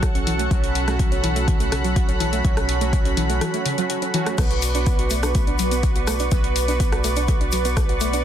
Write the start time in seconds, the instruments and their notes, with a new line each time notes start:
Already playing: analog synth bass B1, analog polysynth F#3 C#4 F#4, analog synth pad A4 F#5 C#6
0.03 synth arpeggio sound F#4, kick, cross-stick, closed hi-hat
0.15 synth arpeggio sound C#4, closed hi-hat
0.27 synth arpeggio sound E3, open hi-hat
0.39 synth arpeggio sound A3, closed hi-hat
0.51 analog synth bass B1, synth arpeggio sound F#3, analog polysynth F#3 C#4 F#4, analog synth pad B5, kick, closed hi-hat
0.64 closed hi-hat
0.75 open hi-hat
0.88 analog polysynth F#3 C#4 F#4, synth arpeggio sound A3, cross-stick, closed hi-hat
0.99 synth arpeggio sound F#3, kick, closed hi-hat
1.12 synth arpeggio sound C#4, closed hi-hat
1.24 synth arpeggio sound E3, open hi-hat
1.36 synth arpeggio sound A3, closed hi-hat
1.48 synth arpeggio sound E3, kick, closed hi-hat
1.60 synth arpeggio sound A3, closed hi-hat
1.72 synth arpeggio sound C#3, cross-stick, open hi-hat
1.84 synth arpeggio sound F#3, closed hi-hat
1.96 synth arpeggio sound F#4, kick, closed hi-hat
2.08 synth arpeggio sound C#4, closed hi-hat
2.20 synth arpeggio sound E3, open hi-hat
2.33 synth arpeggio sound A3, closed hi-hat
2.44 analog synth bass B1, synth arpeggio sound F#3, analog polysynth F#3 C#4 F#4, kick, closed hi-hat
2.57 cross-stick, closed hi-hat
2.69 open hi-hat
2.81 analog polysynth F#3 C#4 F#4, synth arpeggio sound A3, closed hi-hat
2.93 synth arpeggio sound F#3, kick, closed hi-hat
3.05 synth arpeggio sound C#4, closed hi-hat
3.17 synth arpeggio sound E3, open hi-hat
3.30 synth arpeggio sound A3, closed hi-hat
3.41 synth arpeggio sound E3, cross-stick, closed hi-hat
3.54 synth arpeggio sound A3, closed hi-hat
3.66 synth arpeggio sound C#3, open hi-hat
3.78 analog polysynth F#3 C#4 F#4, synth arpeggio sound F#3, closed hi-hat
3.90 synth arpeggio sound F#4, closed hi-hat
4.02 synth arpeggio sound C#4, closed hi-hat
4.14 synth arpeggio sound E3, analog polysynth F#3 C#4 F#4, open hi-hat
4.26 synth arpeggio sound A3, cross-stick, closed hi-hat
4.38 analog synth bass B1, analog polysynth B3 F#4 B4, synth arpeggio sound B3, analog synth pad B4 D5 C#6, kick, cross-stick, closed hi-hat, crash, shaker
4.51 closed hi-hat
4.62 open hi-hat, shaker
4.75 analog polysynth B3 F#4 B4, synth arpeggio sound D4, closed hi-hat, shaker
4.86 synth arpeggio sound B3, kick, closed hi-hat, shaker
4.99 synth arpeggio sound F#4, closed hi-hat
5.10 synth arpeggio sound A3, open hi-hat, shaker
5.23 synth arpeggio sound D4, cross-stick, closed hi-hat, shaker
5.35 synth arpeggio sound A3, kick, closed hi-hat, shaker
5.47 synth arpeggio sound D4, closed hi-hat
5.59 synth arpeggio sound F#3, open hi-hat, shaker
5.71 synth arpeggio sound B3, closed hi-hat, shaker
5.83 synth arpeggio sound B4, kick, closed hi-hat, shaker
5.96 synth arpeggio sound F#4, closed hi-hat
6.07 synth arpeggio sound A3, cross-stick, open hi-hat, shaker
6.19 synth arpeggio sound D4, closed hi-hat, shaker
6.31 analog synth bass B1, synth arpeggio sound B3, analog polysynth B3 F#4 B4, kick, closed hi-hat, shaker
6.44 closed hi-hat
6.56 open hi-hat, shaker
6.68 analog polysynth B3 F#4 B4, synth arpeggio sound D4, closed hi-hat, shaker
6.80 synth arpeggio sound B3, kick, closed hi-hat, shaker
6.92 synth arpeggio sound F#4, cross-stick, closed hi-hat
7.04 synth arpeggio sound A3, open hi-hat, shaker
7.16 synth arpeggio sound D4, closed hi-hat, shaker
7.28 synth arpeggio sound A3, kick, closed hi-hat, shaker
7.41 synth arpeggio sound D4, closed hi-hat
7.52 synth arpeggio sound F#3, open hi-hat, shaker
7.65 synth arpeggio sound B3, closed hi-hat, shaker
7.77 synth arpeggio sound B4, kick, cross-stick, closed hi-hat, shaker
7.89 synth arpeggio sound F#4, closed hi-hat
8.01 synth arpeggio sound A3, open hi-hat, shaker
8.13 synth arpeggio sound D4, closed hi-hat, shaker